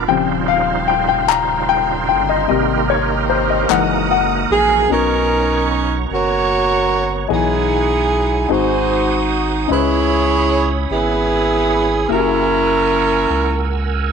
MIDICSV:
0, 0, Header, 1, 7, 480
1, 0, Start_track
1, 0, Tempo, 801068
1, 54, Time_signature, 6, 3, 24, 8
1, 8461, End_track
2, 0, Start_track
2, 0, Title_t, "String section"
2, 0, Program_c, 0, 48
2, 51, Note_on_c, 0, 79, 62
2, 53, Note_on_c, 0, 84, 61
2, 55, Note_on_c, 0, 77, 61
2, 1481, Note_off_c, 0, 77, 0
2, 1499, Note_on_c, 0, 82, 55
2, 1500, Note_on_c, 0, 75, 65
2, 2192, Note_off_c, 0, 79, 0
2, 2193, Note_off_c, 0, 84, 0
2, 2224, Note_on_c, 0, 87, 80
2, 2229, Note_on_c, 0, 78, 77
2, 2922, Note_off_c, 0, 82, 0
2, 2923, Note_off_c, 0, 75, 0
2, 2932, Note_off_c, 0, 87, 0
2, 2935, Note_off_c, 0, 78, 0
2, 8461, End_track
3, 0, Start_track
3, 0, Title_t, "Tonewheel organ"
3, 0, Program_c, 1, 16
3, 0, Note_on_c, 1, 65, 59
3, 47, Note_on_c, 1, 49, 63
3, 49, Note_on_c, 1, 63, 64
3, 49, Note_on_c, 1, 72, 67
3, 50, Note_on_c, 1, 55, 65
3, 1469, Note_off_c, 1, 65, 0
3, 1477, Note_off_c, 1, 49, 0
3, 1478, Note_off_c, 1, 55, 0
3, 1478, Note_off_c, 1, 72, 0
3, 1503, Note_on_c, 1, 48, 68
3, 1504, Note_on_c, 1, 58, 65
3, 1504, Note_on_c, 1, 67, 62
3, 1506, Note_on_c, 1, 70, 77
3, 2190, Note_off_c, 1, 63, 0
3, 2212, Note_off_c, 1, 48, 0
3, 2212, Note_off_c, 1, 67, 0
3, 2223, Note_on_c, 1, 52, 62
3, 2223, Note_on_c, 1, 63, 53
3, 2223, Note_on_c, 1, 66, 61
3, 2925, Note_off_c, 1, 58, 0
3, 2926, Note_off_c, 1, 70, 0
3, 2931, Note_off_c, 1, 63, 0
3, 2931, Note_off_c, 1, 66, 0
3, 2932, Note_off_c, 1, 52, 0
3, 2935, Note_on_c, 1, 82, 51
3, 2935, Note_on_c, 1, 85, 59
3, 2937, Note_on_c, 1, 59, 55
3, 2938, Note_on_c, 1, 73, 51
3, 4360, Note_off_c, 1, 82, 0
3, 4360, Note_off_c, 1, 85, 0
3, 4361, Note_off_c, 1, 59, 0
3, 4374, Note_on_c, 1, 80, 54
3, 4376, Note_on_c, 1, 78, 53
3, 5074, Note_off_c, 1, 73, 0
3, 5087, Note_off_c, 1, 80, 0
3, 5088, Note_off_c, 1, 78, 0
3, 5096, Note_on_c, 1, 72, 52
3, 5099, Note_on_c, 1, 80, 50
3, 5101, Note_on_c, 1, 78, 52
3, 5102, Note_on_c, 1, 87, 59
3, 5808, Note_off_c, 1, 72, 0
3, 5809, Note_off_c, 1, 80, 0
3, 5810, Note_off_c, 1, 78, 0
3, 5810, Note_on_c, 1, 83, 56
3, 5811, Note_on_c, 1, 73, 60
3, 5813, Note_on_c, 1, 64, 58
3, 7236, Note_off_c, 1, 87, 0
3, 7237, Note_off_c, 1, 83, 0
3, 7238, Note_off_c, 1, 64, 0
3, 7238, Note_off_c, 1, 73, 0
3, 7241, Note_on_c, 1, 70, 62
3, 7244, Note_on_c, 1, 80, 50
3, 7244, Note_on_c, 1, 88, 62
3, 7246, Note_on_c, 1, 78, 57
3, 8461, Note_off_c, 1, 70, 0
3, 8461, Note_off_c, 1, 78, 0
3, 8461, Note_off_c, 1, 80, 0
3, 8461, Note_off_c, 1, 88, 0
3, 8461, End_track
4, 0, Start_track
4, 0, Title_t, "Saxophone section"
4, 0, Program_c, 2, 65
4, 2711, Note_on_c, 2, 68, 86
4, 2927, Note_off_c, 2, 68, 0
4, 2950, Note_on_c, 2, 70, 97
4, 2954, Note_on_c, 2, 63, 72
4, 2955, Note_on_c, 2, 61, 61
4, 3422, Note_off_c, 2, 70, 0
4, 3640, Note_off_c, 2, 63, 0
4, 3641, Note_off_c, 2, 61, 0
4, 3672, Note_on_c, 2, 70, 68
4, 3676, Note_on_c, 2, 66, 74
4, 3679, Note_on_c, 2, 73, 91
4, 4359, Note_off_c, 2, 70, 0
4, 4361, Note_off_c, 2, 66, 0
4, 4363, Note_off_c, 2, 73, 0
4, 4395, Note_on_c, 2, 68, 81
4, 4397, Note_on_c, 2, 63, 59
4, 4398, Note_on_c, 2, 64, 59
4, 5082, Note_off_c, 2, 63, 0
4, 5082, Note_off_c, 2, 64, 0
4, 5101, Note_on_c, 2, 66, 60
4, 5101, Note_on_c, 2, 72, 80
4, 5105, Note_off_c, 2, 68, 0
4, 5106, Note_on_c, 2, 63, 64
4, 5578, Note_off_c, 2, 72, 0
4, 5793, Note_off_c, 2, 66, 0
4, 5796, Note_off_c, 2, 63, 0
4, 5825, Note_on_c, 2, 73, 93
4, 5829, Note_on_c, 2, 64, 73
4, 5829, Note_on_c, 2, 68, 71
4, 6444, Note_off_c, 2, 64, 0
4, 6444, Note_off_c, 2, 68, 0
4, 6444, Note_off_c, 2, 73, 0
4, 6545, Note_on_c, 2, 59, 62
4, 6546, Note_on_c, 2, 64, 65
4, 6546, Note_on_c, 2, 68, 85
4, 7235, Note_off_c, 2, 59, 0
4, 7235, Note_off_c, 2, 64, 0
4, 7259, Note_off_c, 2, 68, 0
4, 7266, Note_on_c, 2, 70, 84
4, 7268, Note_on_c, 2, 61, 66
4, 7269, Note_on_c, 2, 64, 67
4, 8273, Note_off_c, 2, 70, 0
4, 8274, Note_off_c, 2, 61, 0
4, 8274, Note_off_c, 2, 64, 0
4, 8461, End_track
5, 0, Start_track
5, 0, Title_t, "Grand piano"
5, 0, Program_c, 3, 0
5, 0, Control_c, 3, 64, 127
5, 49, Note_on_c, 3, 49, 52
5, 51, Note_on_c, 3, 79, 86
5, 52, Note_on_c, 3, 53, 50
5, 55, Note_on_c, 3, 55, 48
5, 55, Note_on_c, 3, 60, 52
5, 62, Control_c, 3, 64, 0
5, 176, Control_c, 3, 64, 127
5, 289, Note_on_c, 3, 77, 96
5, 300, Note_off_c, 3, 79, 0
5, 371, Note_off_c, 3, 49, 0
5, 373, Note_off_c, 3, 53, 0
5, 374, Note_off_c, 3, 55, 0
5, 374, Note_off_c, 3, 60, 0
5, 526, Note_on_c, 3, 79, 87
5, 539, Note_off_c, 3, 77, 0
5, 642, Note_off_c, 3, 79, 0
5, 651, Note_on_c, 3, 79, 84
5, 768, Note_on_c, 3, 82, 93
5, 776, Note_off_c, 3, 79, 0
5, 1012, Note_on_c, 3, 79, 100
5, 1019, Note_off_c, 3, 82, 0
5, 1241, Note_off_c, 3, 79, 0
5, 1250, Note_on_c, 3, 79, 83
5, 1374, Note_on_c, 3, 75, 81
5, 1376, Note_off_c, 3, 79, 0
5, 1481, Note_off_c, 3, 75, 0
5, 1485, Note_on_c, 3, 55, 55
5, 1489, Note_on_c, 3, 58, 49
5, 1490, Note_on_c, 3, 75, 89
5, 1491, Note_on_c, 3, 48, 64
5, 1503, Control_c, 3, 64, 0
5, 1594, Control_c, 3, 64, 127
5, 1737, Note_on_c, 3, 73, 83
5, 1739, Note_off_c, 3, 75, 0
5, 1975, Note_on_c, 3, 72, 73
5, 1983, Note_off_c, 3, 73, 0
5, 2086, Note_off_c, 3, 72, 0
5, 2098, Note_on_c, 3, 75, 67
5, 2186, Note_off_c, 3, 55, 0
5, 2188, Note_off_c, 3, 58, 0
5, 2189, Note_off_c, 3, 48, 0
5, 2209, Note_on_c, 3, 52, 51
5, 2212, Note_on_c, 3, 56, 47
5, 2213, Note_on_c, 3, 58, 53
5, 2216, Note_on_c, 3, 63, 61
5, 2220, Note_off_c, 3, 75, 0
5, 2222, Note_on_c, 3, 78, 87
5, 2223, Control_c, 3, 64, 0
5, 2311, Control_c, 3, 64, 127
5, 2454, Note_off_c, 3, 78, 0
5, 2463, Note_on_c, 3, 78, 90
5, 2908, Note_off_c, 3, 52, 0
5, 2909, Note_off_c, 3, 56, 0
5, 2910, Note_off_c, 3, 58, 0
5, 2911, Note_off_c, 3, 63, 0
5, 2915, Note_off_c, 3, 78, 0
5, 2924, Note_on_c, 3, 59, 51
5, 2935, Note_on_c, 3, 61, 48
5, 2937, Note_on_c, 3, 47, 51
5, 2939, Note_on_c, 3, 63, 46
5, 2942, Control_c, 3, 64, 0
5, 2952, Note_on_c, 3, 70, 63
5, 3055, Control_c, 3, 64, 127
5, 3632, Note_off_c, 3, 47, 0
5, 4345, Note_off_c, 3, 59, 0
5, 4351, Note_off_c, 3, 61, 0
5, 4353, Note_off_c, 3, 63, 0
5, 4359, Note_off_c, 3, 70, 0
5, 4364, Note_on_c, 3, 75, 54
5, 4366, Note_on_c, 3, 52, 53
5, 4367, Note_on_c, 3, 47, 52
5, 4373, Note_on_c, 3, 66, 52
5, 4374, Note_on_c, 3, 68, 61
5, 4381, Control_c, 3, 64, 0
5, 4503, Control_c, 3, 64, 127
5, 5066, Note_off_c, 3, 47, 0
5, 5079, Note_off_c, 3, 66, 0
5, 5083, Note_on_c, 3, 60, 48
5, 5087, Note_off_c, 3, 68, 0
5, 5087, Note_on_c, 3, 63, 51
5, 5088, Note_on_c, 3, 66, 50
5, 5089, Note_off_c, 3, 75, 0
5, 5090, Note_off_c, 3, 52, 0
5, 5090, Note_on_c, 3, 44, 50
5, 5096, Note_on_c, 3, 68, 59
5, 5101, Control_c, 3, 64, 0
5, 5214, Control_c, 3, 64, 127
5, 5788, Note_off_c, 3, 44, 0
5, 5798, Note_on_c, 3, 61, 54
5, 5804, Note_on_c, 3, 75, 47
5, 5808, Note_off_c, 3, 60, 0
5, 5810, Note_off_c, 3, 63, 0
5, 5811, Note_off_c, 3, 66, 0
5, 5811, Note_on_c, 3, 49, 53
5, 5814, Note_on_c, 3, 64, 45
5, 5815, Note_off_c, 3, 68, 0
5, 5821, Control_c, 3, 64, 0
5, 5823, Note_on_c, 3, 71, 62
5, 5922, Control_c, 3, 64, 127
5, 6508, Note_off_c, 3, 49, 0
5, 7221, Note_off_c, 3, 61, 0
5, 7224, Note_off_c, 3, 75, 0
5, 7229, Note_off_c, 3, 64, 0
5, 7234, Note_off_c, 3, 71, 0
5, 7241, Note_on_c, 3, 58, 51
5, 7249, Note_on_c, 3, 64, 52
5, 7258, Note_on_c, 3, 66, 55
5, 7260, Control_c, 3, 64, 0
5, 7266, Note_on_c, 3, 67, 47
5, 7299, Note_off_c, 3, 67, 0
5, 7305, Note_on_c, 3, 68, 53
5, 7348, Control_c, 3, 64, 127
5, 8461, Note_off_c, 3, 58, 0
5, 8461, Note_off_c, 3, 64, 0
5, 8461, Note_off_c, 3, 66, 0
5, 8461, Note_off_c, 3, 68, 0
5, 8461, End_track
6, 0, Start_track
6, 0, Title_t, "Sub bass"
6, 0, Program_c, 4, 38
6, 55, Note_on_c, 4, 27, 115
6, 1257, Note_on_c, 4, 31, 88
6, 1266, Note_off_c, 4, 27, 0
6, 1477, Note_off_c, 4, 31, 0
6, 1495, Note_on_c, 4, 32, 97
6, 2191, Note_off_c, 4, 32, 0
6, 2216, Note_on_c, 4, 30, 114
6, 2671, Note_off_c, 4, 30, 0
6, 2698, Note_on_c, 4, 34, 88
6, 2917, Note_off_c, 4, 34, 0
6, 2936, Note_on_c, 4, 35, 89
6, 3631, Note_off_c, 4, 35, 0
6, 3657, Note_on_c, 4, 30, 91
6, 4352, Note_off_c, 4, 30, 0
6, 4376, Note_on_c, 4, 35, 92
6, 5071, Note_off_c, 4, 35, 0
6, 5092, Note_on_c, 4, 32, 100
6, 5789, Note_off_c, 4, 32, 0
6, 5811, Note_on_c, 4, 37, 90
6, 6508, Note_off_c, 4, 37, 0
6, 6531, Note_on_c, 4, 32, 99
6, 7228, Note_off_c, 4, 32, 0
6, 7248, Note_on_c, 4, 30, 96
6, 7946, Note_off_c, 4, 30, 0
6, 7969, Note_on_c, 4, 37, 91
6, 8461, Note_off_c, 4, 37, 0
6, 8461, End_track
7, 0, Start_track
7, 0, Title_t, "Drums"
7, 776, Note_on_c, 9, 39, 88
7, 836, Note_off_c, 9, 39, 0
7, 2218, Note_on_c, 9, 39, 86
7, 2278, Note_off_c, 9, 39, 0
7, 8461, End_track
0, 0, End_of_file